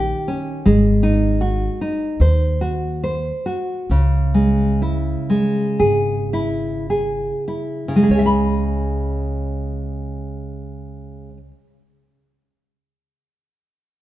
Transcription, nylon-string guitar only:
Already playing: D#3 G4
0.28 C#4
0.66 G#3
1.03 D#4
1.41 F#4
1.81 D#4
2.21 C5
2.61 F#4
3.04 C5
3.46 F#4
3.91 C#3
4.34 G#3
4.82 E4
5.30 G#3
5.79 G#4
6.33 E4
6.90 G#4
7.48 E4
7.88 C#3
7.96 G#3
8.03 G#4
8.11 C#5
8.19 E5
8.26 B5

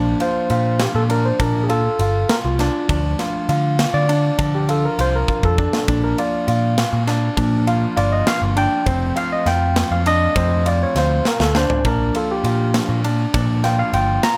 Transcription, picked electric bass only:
Already playing: A#1
0.50 A#2
0.95 A#2
1.40 A#2
1.99 G1
2.44 C2
2.89 D2
3.49 D3
3.94 D3
4.39 D3
4.99 C2
5.43 F2
5.88 A#1
6.48 A#2
6.93 A#2
7.37 A#2
7.97 G1
8.42 G1
8.86 F1
9.46 F2
9.91 F2
10.36 F2
10.95 D2
11.40 D2
11.85 A#1
12.44 A#2
12.89 A#2
13.34 A#2
13.93 G1

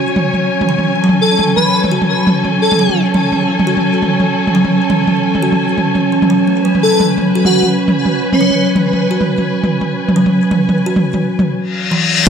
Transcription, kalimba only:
Already playing: F#4
0.69 E3
1.04 F#3
1.39 E3
1.92 F#4
2.79 F#3
3.14 E3
3.67 F#4
4.55 F#3
4.90 E3
5.42 F#4
6.12 E3
6.30 F#3
6.47 A3
6.65 F#3
7.00 E3
7.35 F#4
8.41 F#3
8.76 E3
9.11 F#4
10.16 F#3
10.51 E3
10.86 F#4
11.91 E3

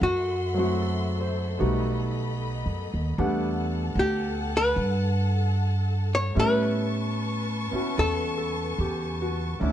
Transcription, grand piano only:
0.54 F#3 A3 C4 E4
0.59 F#4
0.82 A4
1.21 C5
1.59 G3 A3 B3 D#4 F#4
3.18 G3 A3 B3 D4 F#5
6.35 G3 A3 B3 C#4 E4
7.71 B3 C#4 E4 F#4
8.38 A4
8.80 G4
9.22 F#4
9.60 A3 C#4 D4 E4

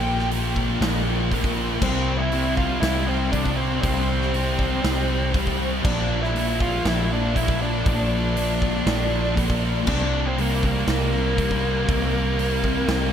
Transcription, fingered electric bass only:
Already playing: A#1
0.81 A#1
1.82 C2
2.82 C2
3.83 C2
4.84 C2
5.85 A#1
6.85 A#1
7.86 A#1
8.86 A#1
9.87 C2
10.88 C2
11.89 C2
12.88 C2

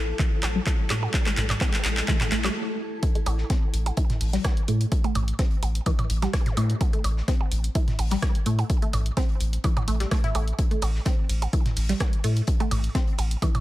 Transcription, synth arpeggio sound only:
0.19 E3
0.56 G3
0.90 A3
1.26 A3
1.61 C4
2.08 E3
2.32 A3
2.44 G3
3.15 A3
3.50 C4
3.97 E3
4.33 G3
4.68 A3
5.04 A3
5.39 C4
5.86 E3
6.22 G3
6.57 A3
6.93 A3
7.28 C4
7.75 E3
8.11 G3
8.46 A3
8.82 A3
9.17 C4
9.64 E3
9.88 A3
10.00 G3
10.11 A3
10.24 E4
10.35 A3
10.71 A3
11.06 C4
11.53 E3
11.89 G3
12.24 A3
12.60 A3
12.95 C4
13.42 E3

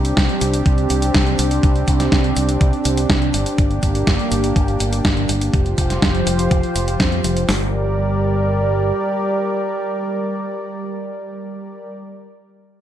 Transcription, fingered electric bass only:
Already playing: C2
0.17 C2
0.41 C2
0.66 C2
0.90 C2
1.15 C2
1.39 C2
1.63 C2
1.88 C2
2.12 C2
2.37 C2
2.61 C2
2.85 C2
3.10 C2
3.34 G1
3.58 G1
3.83 G1
4.07 G1
4.32 G1
4.56 G1
4.80 G1
5.05 G1
5.29 G1
5.54 F1
5.78 F1
6.02 F1
6.27 F1
6.51 F1
6.76 F1
7.00 F2
7.24 F1
7.49 G1

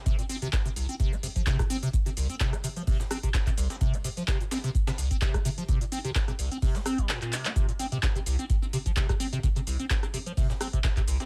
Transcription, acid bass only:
0.06 C3
0.19 A#2
0.29 C4
0.42 C3
0.66 C3
0.76 C2
0.89 C4
1.00 C3
1.12 C4
1.23 C3
1.36 F3
1.47 C3
1.59 A#2
1.70 C4
1.83 C3
2.06 C3
2.17 C2
2.30 C4
2.40 C3
2.53 C4
2.64 C3
2.76 F3
2.87 C3
3.00 A#2
3.11 C4
3.23 C3
3.47 C3
3.58 C2
3.70 C4
3.81 C3
3.94 C4
4.04 C3
4.17 F3
4.28 C3
4.41 A#2
4.51 C4
4.64 C3
4.87 C3
4.98 C2
5.11 C4
5.22 C3
5.34 C4
5.45 C3
5.58 F3
5.69 C3
5.81 A#2
5.92 C4
6.05 C3
6.28 C3
6.39 C2
6.51 C4
6.62 C3
6.75 C4
6.86 C4
6.98 G3
7.09 A#2
7.22 A#2
7.33 C3
7.45 C4
7.56 C3
7.69 A#2
7.79 C4
7.92 C3
8.03 C3
8.15 C3
8.26 C2
8.39 C4
8.62 C4
8.73 C3
8.86 F3
8.97 C3
9.09 A#2
9.20 C4
9.33 C3
9.43 C3
9.56 C3
9.67 C2
9.79 C4
10.03 C4
10.14 C3
10.26 F3
10.37 C3
10.50 A#2
10.61 C4
10.73 C3
10.84 C3
10.97 C3
11.07 C2
11.20 C4

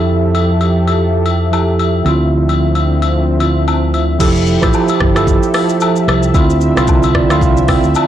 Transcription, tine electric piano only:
Already playing: F3 E4 G4 A4
1.51 F3 E4 G4 A4
2.03 D3 C4 E4
2.08 F4
3.39 D3 C4 E4 F4
4.19 F3 E4 G4 A4
4.61 F3 E4 G4 C5
5.15 F3 E4 G4 A4
6.33 D3 C4 E4 F4
6.76 D3 C4 E4 F4
7.15 D5
7.29 D3 C4 E4 F4
7.42 F5
7.68 G5
7.95 A5

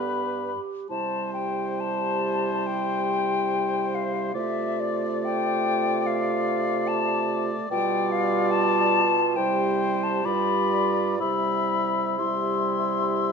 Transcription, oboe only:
Already playing: B4
0.91 C5
4.34 D5
7.71 D5
9.37 C5
10.26 D5
11.21 E5
12.18 E5

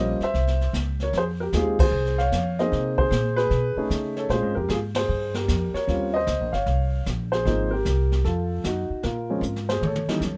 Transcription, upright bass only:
Already playing: A#1
0.20 muted upright bass stroke
0.34 C2
0.73 C#2
1.13 F2
1.53 D#2
1.91 C2
2.32 F2
2.72 C3
3.11 A#2
3.50 B2
3.76 muted upright bass stroke
3.90 C#3
4.29 A#2
4.42 G#2
4.56 F2
4.69 G#2
5.08 G2
5.48 F2
5.74 muted upright bass stroke
5.88 D#2
6.27 C#2
6.40 A#1
6.53 G1
6.66 C2
7.06 A#1
7.45 G#1
7.85 C2
8.24 F2
8.64 F#2
8.90 muted upright bass stroke
9.04 A#2
9.41 G#2
9.81 A2
10.07 muted upright bass stroke
10.21 F#2

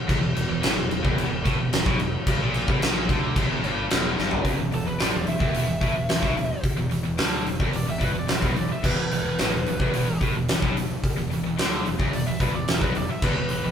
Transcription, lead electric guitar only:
4.74 A4
4.87 B4
5.02 D5
5.28 E5
5.57 E5
7.76 D5
7.90 E5
8.04 B4
8.19 D5
8.32 E5
8.45 B4
8.57 D5
8.72 E5
8.85 B4
9.13 B4
12.15 D5
12.27 E5
12.41 B4
12.55 D5
12.70 E5
12.82 B4
12.97 D5
13.10 E5
13.24 B4
13.51 B4

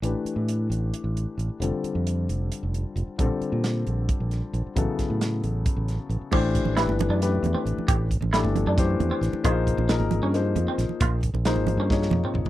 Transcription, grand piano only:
0.02 E3 A3 D4 G4 B4
1.60 D3 G3 C4 F4 A4
3.18 D3 G3 C4 F4 A4
4.76 C#3 F#3 B3 E4 A4
6.31 E3 A3 D4 G4 C5
6.76 E3 A3 D4 G4 B4
7.21 E3 A3 D4 G4 B4
8.33 E3 A3 D4 G4 A4
8.77 E3 A3 D4 G4 C5
9.44 F3 A#3 D#4 G#4 C5
9.89 F3 A#3 D#4 G#4 A#4
10.34 F3 A#3 D#4 G#4 C5
11.45 F3 A#3 D#4 G#4 C5
11.90 F3 A#3 D#4 G#4 C#5

